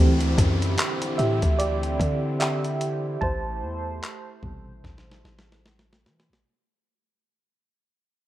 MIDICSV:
0, 0, Header, 1, 6, 480
1, 0, Start_track
1, 0, Key_signature, 0, "minor"
1, 0, Tempo, 810811
1, 1904, Time_signature, 4, 2, 24, 8
1, 4901, End_track
2, 0, Start_track
2, 0, Title_t, "FM electric piano"
2, 0, Program_c, 0, 5
2, 0, Note_on_c, 0, 52, 57
2, 0, Note_on_c, 0, 60, 62
2, 0, Note_on_c, 0, 67, 51
2, 88, Control_c, 0, 64, 127
2, 681, Note_off_c, 0, 52, 0
2, 683, Note_off_c, 0, 67, 0
2, 685, Note_off_c, 0, 60, 0
2, 699, Note_on_c, 0, 76, 75
2, 713, Note_on_c, 0, 67, 61
2, 932, Note_off_c, 0, 67, 0
2, 939, Note_on_c, 0, 74, 84
2, 949, Note_off_c, 0, 76, 0
2, 953, Note_on_c, 0, 67, 64
2, 1405, Note_off_c, 0, 67, 0
2, 1419, Note_on_c, 0, 76, 83
2, 1433, Note_on_c, 0, 67, 64
2, 1436, Note_off_c, 0, 74, 0
2, 1885, Note_off_c, 0, 67, 0
2, 1900, Note_on_c, 0, 81, 99
2, 1911, Control_c, 0, 64, 0
2, 1913, Note_on_c, 0, 72, 77
2, 1916, Note_off_c, 0, 76, 0
2, 2018, Control_c, 0, 64, 127
2, 2626, Note_on_c, 0, 48, 49
2, 2629, Note_on_c, 0, 55, 48
2, 2633, Note_on_c, 0, 47, 57
2, 2959, Note_off_c, 0, 48, 0
2, 2960, Note_off_c, 0, 55, 0
2, 2963, Note_off_c, 0, 47, 0
2, 3318, Note_off_c, 0, 81, 0
2, 3325, Note_off_c, 0, 72, 0
2, 3833, Control_c, 0, 64, 0
2, 4901, End_track
3, 0, Start_track
3, 0, Title_t, "Analog synth pad"
3, 0, Program_c, 1, 89
3, 0, Note_on_c, 1, 50, 84
3, 0, Note_on_c, 1, 60, 72
3, 0, Note_on_c, 1, 64, 73
3, 0, Note_on_c, 1, 67, 89
3, 1885, Note_off_c, 1, 50, 0
3, 1885, Note_off_c, 1, 60, 0
3, 1904, Note_on_c, 1, 72, 94
3, 1905, Note_on_c, 1, 57, 78
3, 3801, Note_off_c, 1, 64, 0
3, 3801, Note_off_c, 1, 67, 0
3, 3805, Note_off_c, 1, 57, 0
3, 3805, Note_off_c, 1, 72, 0
3, 4901, End_track
4, 0, Start_track
4, 0, Title_t, "808-style bass"
4, 0, Program_c, 2, 38
4, 0, Note_on_c, 2, 38, 107
4, 215, Note_off_c, 2, 38, 0
4, 225, Note_on_c, 2, 42, 102
4, 455, Note_off_c, 2, 42, 0
4, 706, Note_on_c, 2, 45, 98
4, 839, Note_off_c, 2, 45, 0
4, 846, Note_on_c, 2, 38, 97
4, 1172, Note_off_c, 2, 38, 0
4, 1183, Note_on_c, 2, 50, 103
4, 1880, Note_off_c, 2, 50, 0
4, 1905, Note_on_c, 2, 33, 98
4, 2146, Note_on_c, 2, 40, 92
4, 2155, Note_off_c, 2, 33, 0
4, 2373, Note_off_c, 2, 40, 0
4, 2622, Note_on_c, 2, 33, 99
4, 2853, Note_off_c, 2, 33, 0
4, 2867, Note_on_c, 2, 33, 99
4, 3096, Note_off_c, 2, 33, 0
4, 3107, Note_on_c, 2, 33, 100
4, 3586, Note_on_c, 2, 52, 96
4, 3595, Note_off_c, 2, 33, 0
4, 3726, Note_on_c, 2, 33, 97
4, 3734, Note_off_c, 2, 52, 0
4, 3820, Note_off_c, 2, 33, 0
4, 4901, End_track
5, 0, Start_track
5, 0, Title_t, "Downlifter"
5, 0, Program_c, 3, 103
5, 0, Note_on_c, 3, 60, 81
5, 3824, Note_off_c, 3, 60, 0
5, 4901, End_track
6, 0, Start_track
6, 0, Title_t, "Drums"
6, 122, Note_on_c, 9, 42, 46
6, 181, Note_off_c, 9, 42, 0
6, 224, Note_on_c, 9, 36, 98
6, 228, Note_on_c, 9, 42, 74
6, 283, Note_off_c, 9, 36, 0
6, 287, Note_off_c, 9, 42, 0
6, 368, Note_on_c, 9, 42, 52
6, 427, Note_off_c, 9, 42, 0
6, 460, Note_on_c, 9, 42, 60
6, 468, Note_on_c, 9, 39, 100
6, 519, Note_off_c, 9, 42, 0
6, 527, Note_off_c, 9, 39, 0
6, 602, Note_on_c, 9, 42, 69
6, 662, Note_off_c, 9, 42, 0
6, 704, Note_on_c, 9, 42, 52
6, 764, Note_off_c, 9, 42, 0
6, 843, Note_on_c, 9, 42, 52
6, 845, Note_on_c, 9, 36, 90
6, 902, Note_off_c, 9, 42, 0
6, 905, Note_off_c, 9, 36, 0
6, 945, Note_on_c, 9, 42, 73
6, 1004, Note_off_c, 9, 42, 0
6, 1085, Note_on_c, 9, 42, 49
6, 1144, Note_off_c, 9, 42, 0
6, 1182, Note_on_c, 9, 36, 84
6, 1188, Note_on_c, 9, 42, 58
6, 1241, Note_off_c, 9, 36, 0
6, 1247, Note_off_c, 9, 42, 0
6, 1421, Note_on_c, 9, 42, 61
6, 1430, Note_on_c, 9, 39, 116
6, 1480, Note_off_c, 9, 42, 0
6, 1489, Note_off_c, 9, 39, 0
6, 1566, Note_on_c, 9, 42, 45
6, 1625, Note_off_c, 9, 42, 0
6, 1663, Note_on_c, 9, 42, 74
6, 1723, Note_off_c, 9, 42, 0
6, 1904, Note_on_c, 9, 36, 114
6, 1963, Note_off_c, 9, 36, 0
6, 2388, Note_on_c, 9, 39, 98
6, 2447, Note_off_c, 9, 39, 0
6, 2621, Note_on_c, 9, 36, 86
6, 2680, Note_off_c, 9, 36, 0
6, 2866, Note_on_c, 9, 36, 83
6, 2869, Note_on_c, 9, 38, 50
6, 2925, Note_off_c, 9, 36, 0
6, 2928, Note_off_c, 9, 38, 0
6, 2949, Note_on_c, 9, 38, 45
6, 3008, Note_off_c, 9, 38, 0
6, 3028, Note_on_c, 9, 38, 57
6, 3088, Note_off_c, 9, 38, 0
6, 3108, Note_on_c, 9, 38, 56
6, 3168, Note_off_c, 9, 38, 0
6, 3189, Note_on_c, 9, 38, 71
6, 3248, Note_off_c, 9, 38, 0
6, 3269, Note_on_c, 9, 38, 59
6, 3328, Note_off_c, 9, 38, 0
6, 3349, Note_on_c, 9, 38, 76
6, 3408, Note_off_c, 9, 38, 0
6, 3429, Note_on_c, 9, 38, 62
6, 3488, Note_off_c, 9, 38, 0
6, 3509, Note_on_c, 9, 38, 82
6, 3568, Note_off_c, 9, 38, 0
6, 3589, Note_on_c, 9, 38, 73
6, 3648, Note_off_c, 9, 38, 0
6, 3669, Note_on_c, 9, 38, 86
6, 3728, Note_off_c, 9, 38, 0
6, 3749, Note_on_c, 9, 38, 76
6, 3808, Note_off_c, 9, 38, 0
6, 4901, End_track
0, 0, End_of_file